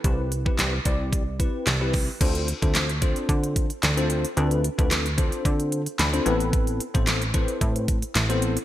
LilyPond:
<<
  \new Staff \with { instrumentName = "Tine electric piano" } { \time 4/4 \key d \dorian \tempo 4 = 111 << { r1 | r1 | r2. b''4 | r1 | } \\ { <c' e' g' b'>8 r16 <c' e' g' b'>8 r16 <c' e' g' d''>8. r16 <c' e' g' b'>8 r16 <c' e' g' b'>8 r16 | <c' d' f' a' c''>8 r16 <c' d' f' a' c''>8 r16 <c' d' f' a' c''>4~ <c' d' f' a' c''>16 r8 <c' d' f' a' c''>8 r16 | <c' d' f' a' b'>8 r16 <c' d' f' a' b'>8 r16 <c' d' f' a' c''>4~ <c' d' f' a' c''>16 r8 <c' d' f' a' c''>16 <b c' e' a' b'>8~ | <b c' e' a' b'>8 r16 <b c' e' a' c''>8 r16 <c' e' a' b' c''>4~ <c' e' a' b' c''>16 r8 <b c' e' a' c''>8 r16 | } >> }
  \new Staff \with { instrumentName = "Analog synth bass" } { \clef bass \time 4/4 \key d \dorian c,4 c,8 c,4. c,4 | d,8. d,4~ d,16 d4 d,4 | d,8. d,4~ d,16 d4 d,8 a,,8~ | a,,8. a,,4~ a,,16 a,4 a,,4 | }
  \new DrumStaff \with { instrumentName = "Drums" } \drummode { \time 4/4 <hh bd>8 hh16 bd16 <hc hh sn>8 <hh bd>8 <hh bd>8 <hh bd>8 <hc hh sn>8 <hho bd>8 | <cymc hh bd>16 hh16 hh16 <hh bd>16 <hc hh sn>16 hh16 <hh bd>16 hh16 <hh bd>16 hh16 <hh bd>16 hh16 <hc hh sn>16 hh16 hh16 hh16 | hh16 hh16 hh16 <hh bd>16 <hc hh sn>16 hh16 <hh bd>16 hh16 <hh bd>16 hh16 hh16 hh16 <hc hh sn>16 hh16 hh16 hh16 | <hh bd>16 hh16 hh16 <hh bd>16 <hc hh sn>16 hh16 <hh bd>16 hh16 <hh bd>16 hh16 <hh bd>16 hh16 <hc hh sn>16 hh16 hh16 hh16 | }
>>